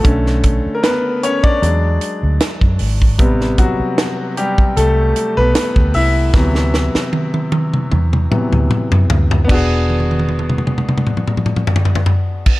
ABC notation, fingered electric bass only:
X:1
M:4/4
L:1/16
Q:"Swing 16ths" 1/4=76
K:Dmix
V:1 name="Fingered electric bass" clef=bass
B,,,3 z4 z E,,2 z D,, z F,, ^G,,,2 | A,,,3 z4 z C,,2 z B,,, z D,, C,,2 | D,,3 z4 z E,,2 z D,, z F,, D,,2 | E,,,16 |]